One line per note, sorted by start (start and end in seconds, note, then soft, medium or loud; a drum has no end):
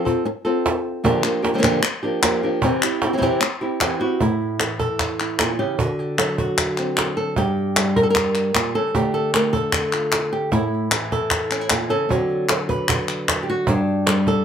0.05 0.24 C4 soft
0.05 0.24 F4 soft
0.05 0.24 A4 medium
0.05 cajon bass medium
0.25 muted nylon-string guitar stroke medium
0.25 cajon slap soft
0.45 1.04 C4 medium
0.45 1.04 F4 medium
0.45 1.03 A4 medium
0.45 cajon slap soft
0.66 cajon bass medium
0.66 cajon slap loud
1.04 1.23 A#2 medium
1.04 1.23 D3 medium
1.04 1.23 F3 medium
1.04 1.23 A#3 medium
1.04 1.23 D4 medium
1.04 1.22 G4 medium
1.04 cajon bass loud
1.23 1.43 F3 soft
1.23 1.42 A#3 soft
1.23 1.42 D4 medium
1.23 1.41 G4 soft
1.23 clap medium
1.42 1.53 F3 soft
1.42 1.54 A#3 soft
1.42 1.54 D4 medium
1.42 1.54 G4 medium
1.42 cajon slap loud
1.54 1.57 D3 soft
1.54 1.58 F3 medium
1.54 1.57 A#3 medium
1.54 1.58 D4 medium
1.54 1.58 G4 soft
1.58 1.62 D3 medium
1.58 1.62 F3 medium
1.58 1.62 A#3 medium
1.58 1.63 D4 medium
1.58 1.63 G4 medium
1.63 1.81 A#2 medium
1.63 1.81 D3 medium
1.63 1.81 F3 medium
1.63 1.81 A#3 medium
1.63 1.82 D4 medium
1.63 1.82 G4 loud
1.63 cajon bass medium
1.63 clap medium
1.82 muted nylon-string guitar stroke medium
1.82 clap medium
2.03 2.21 F3 soft
2.03 2.21 A#3 soft
2.03 2.22 D4 medium
2.03 2.22 G4 medium
2.22 2.42 F3 medium
2.22 2.42 A#3 medium
2.22 2.42 D4 medium
2.22 2.42 G4 medium
2.22 cajon bass medium
2.22 cajon slap loud
2.22 clap medium
2.43 2.62 F3 medium
2.43 2.62 A#3 soft
2.43 2.62 D4 soft
2.43 2.62 G4 medium
2.62 2.82 C3 medium
2.62 2.82 E3 medium
2.62 2.82 C4 medium
2.62 2.82 E4 medium
2.62 2.83 G4 medium
2.62 cajon bass loud
2.82 3.03 C4 soft
2.82 3.03 E4 soft
2.82 3.02 G4 medium
2.82 clap medium
3.02 3.12 C4 soft
3.02 3.13 E4 medium
3.02 3.13 G4 medium
3.02 cajon slap loud
3.13 3.16 E3 soft
3.13 3.17 C4 medium
3.13 3.17 E4 medium
3.13 3.17 G4 medium
3.17 3.21 E3 medium
3.17 3.21 C4 medium
3.17 3.22 E4 medium
3.17 3.22 G4 medium
3.21 3.41 C3 medium
3.21 3.41 E3 medium
3.21 3.41 C4 medium
3.21 3.41 E4 medium
3.21 3.41 G4 medium
3.21 cajon bass medium
3.41 muted nylon-string guitar stroke medium
3.41 clap medium
3.61 3.80 C4 soft
3.61 3.80 E4 soft
3.61 3.80 G4 medium
3.61 cajon slap soft
3.80 4.00 E3 medium
3.80 4.00 C4 medium
3.80 3.99 E4 medium
3.80 3.98 G4 medium
3.80 cajon bass medium
3.80 cajon slap medium
3.80 clap medium
4.00 4.20 C4 soft
4.00 4.20 E4 soft
4.00 4.21 F#4 medium
4.00 4.19 G4 medium
4.20 5.39 A2 medium
4.20 5.20 E4 medium
4.20 cajon bass medium
4.41 cajon slap soft
4.60 5.79 E3 medium
4.60 cajon slap medium
4.60 clap medium
4.79 5.59 A4 medium
4.79 cajon bass medium
4.99 cajon bass medium
4.99 cajon slap soft
4.99 clap medium
5.20 5.77 E4 soft
5.20 clap medium
5.39 5.59 A#2 medium
5.39 cajon bass medium
5.39 cajon slap medium
5.39 clap medium
5.59 5.78 C#3 medium
5.59 5.80 G4 medium
5.79 7.34 D3 medium
5.79 6.18 F#4 medium
5.79 cajon bass medium
5.99 6.18 G4 medium
6.18 7.34 F#3 medium
6.18 6.38 A4 medium
6.18 cajon slap medium
6.18 clap medium
6.38 7.16 F#4 medium
6.38 cajon bass medium
6.58 cajon bass medium
6.58 cajon slap soft
6.58 clap medium
6.77 7.35 C4 soft
6.77 clap medium
6.97 cajon slap medium
6.97 clap medium
7.17 7.37 A4 medium
7.17 cajon slap soft
7.36 8.54 G2 medium
7.36 7.96 G4 loud
7.36 cajon bass medium
7.57 cajon slap soft
7.76 8.93 G3 medium
7.76 cajon slap medium
7.76 clap medium
7.96 8.03 A#4 medium
7.96 cajon bass medium
8.03 8.10 A4 medium
8.10 8.75 A#4 loud
8.15 cajon bass medium
8.15 cajon slap soft
8.15 clap medium
8.35 clap medium
8.55 8.75 A#2 medium
8.55 cajon bass medium
8.55 cajon slap medium
8.55 clap medium
8.75 8.94 C#3 medium
8.75 8.95 A4 loud
8.95 10.50 D3 medium
8.95 9.33 A3 medium
8.95 10.50 D4 soft
8.95 9.54 G4 loud
8.95 cajon bass medium
9.14 9.34 A4 medium
9.34 10.91 A3 medium
9.34 9.52 A#4 medium
9.34 cajon slap medium
9.34 clap medium
9.53 10.52 A4 medium
9.53 cajon bass medium
9.73 cajon bass medium
9.73 cajon slap soft
9.73 clap medium
9.93 10.32 F4 soft
9.93 clap medium
10.12 cajon slap medium
10.12 clap medium
10.33 10.52 G4 medium
10.33 cajon slap soft
10.52 11.70 A2 medium
10.52 11.51 E4 loud
10.52 cajon bass medium
10.73 cajon slap soft
10.91 12.09 E3 medium
10.91 cajon slap medium
10.91 clap medium
11.12 11.89 A4 medium
11.12 cajon bass medium
11.30 cajon bass medium
11.30 cajon slap soft
11.30 clap medium
11.51 11.61 C#4 soft
11.51 clap medium
11.61 12.10 E4 soft
11.70 11.90 A#2 medium
11.70 cajon bass medium
11.70 cajon slap medium
11.70 clap medium
11.89 12.09 C#3 medium
11.89 12.11 A4 loud
12.09 13.65 D3 medium
12.09 12.48 F#3 soft
12.09 13.66 C4 medium
12.09 12.69 F#4 loud
12.09 cajon bass medium
12.29 cajon slap soft
12.49 13.65 F#3 medium
12.49 cajon slap medium
12.49 clap medium
12.69 13.48 B4 loud
12.69 cajon bass medium
12.88 cajon bass loud
12.88 clap medium
13.09 clap medium
13.29 cajon bass medium
13.29 cajon slap medium
13.29 clap medium
13.43 13.48 G4 medium
13.50 13.68 F#4 medium
13.67 14.45 G2 medium
13.67 14.45 D4 loud
13.67 cajon bass loud
13.87 cajon slap soft
14.07 14.45 G3 medium
14.07 cajon slap medium
14.07 clap medium
14.27 14.45 A4 medium
14.27 cajon bass medium